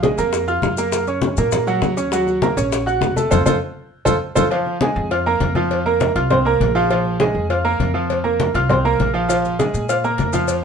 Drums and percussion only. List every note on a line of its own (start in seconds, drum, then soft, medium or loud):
0.03 high bongo medium
0.03 high conga loud
0.03 maracas soft
0.18 high conga soft
0.18 maracas medium
0.33 high bongo medium
0.33 high conga soft
0.33 maracas medium
0.48 high bongo soft
0.48 high conga soft
0.48 maracas soft
0.62 high bongo medium
0.62 low bongo medium
0.62 high conga medium
0.62 maracas soft
0.77 high bongo soft
0.77 maracas medium
0.92 high bongo medium
0.92 high conga soft
0.92 maracas medium
1.07 high conga soft
1.07 maracas soft
1.22 high bongo medium
1.22 high conga loud
1.22 maracas soft
1.37 high bongo soft
1.37 high conga soft
1.37 maracas medium
1.52 high bongo medium
1.52 high conga soft
1.52 low conga medium
1.52 maracas medium
1.67 high bongo soft
1.67 high conga soft
1.67 maracas soft
1.82 high bongo medium
1.82 low bongo medium
1.82 high conga medium
1.82 maracas soft
1.97 high bongo soft
1.97 high conga soft
1.97 maracas medium
2.12 high bongo medium
2.12 high conga soft
2.12 maracas medium
2.27 high bongo soft
2.27 high conga soft
2.27 maracas soft
2.42 high bongo medium
2.42 high conga loud
2.42 maracas soft
2.57 high conga soft
2.57 maracas medium
2.72 high bongo medium
2.72 high conga soft
2.72 maracas medium
2.86 high bongo soft
2.86 high conga soft
2.86 maracas soft
3.01 high bongo medium
3.01 low bongo medium
3.01 high conga medium
3.01 maracas soft
3.17 high bongo soft
3.17 high conga medium
3.17 maracas medium
3.31 low bongo loud
3.31 high conga loud
3.31 maracas loud
3.46 low bongo loud
3.46 high conga loud
3.46 maracas loud
4.06 low bongo medium
4.06 high conga loud
4.06 maracas loud
4.36 low bongo medium
4.36 high conga loud
4.36 maracas loud
4.51 cowbell loud
4.51 high conga soft
4.66 high conga soft
4.81 cowbell medium
4.81 high conga loud
4.96 high conga soft
5.11 cowbell loud
5.11 high conga soft
5.26 high conga soft
5.40 cowbell medium
5.40 high conga medium
5.55 high conga medium
5.71 cowbell loud
5.71 high conga soft
5.86 high conga soft
6.00 cowbell medium
6.00 high conga loud
6.16 cowbell medium
6.16 high conga soft
6.30 cowbell loud
6.30 high conga soft
6.30 low conga medium
6.45 high conga soft
6.61 cowbell medium
6.61 high conga medium
6.75 high conga soft
6.90 cowbell loud
6.90 high conga soft
7.05 high conga soft
7.20 cowbell medium
7.20 high conga loud
7.34 high conga soft
7.50 cowbell loud
7.50 high conga soft
7.65 high conga soft
7.80 cowbell medium
7.80 high conga medium
8.10 cowbell loud
8.10 high conga soft
8.25 high conga soft
8.40 cowbell medium
8.40 high conga loud
8.54 cowbell medium
8.54 high conga soft
8.69 cowbell loud
8.69 high conga soft
8.69 low conga medium
8.85 high conga soft
9.00 cowbell medium
9.00 high conga medium
9.15 high conga soft
9.30 cowbell loud
9.30 high conga soft
9.30 maracas loud
9.45 high conga soft
9.45 maracas soft
9.60 cowbell medium
9.60 high conga loud
9.60 maracas soft
9.74 high conga soft
9.74 maracas medium
9.89 cowbell loud
9.89 high conga soft
9.89 maracas medium
10.04 high conga soft
10.04 maracas soft
10.18 cowbell medium
10.18 high conga medium
10.18 maracas soft
10.33 high conga medium
10.33 maracas medium
10.48 cowbell loud
10.48 high conga soft
10.48 maracas medium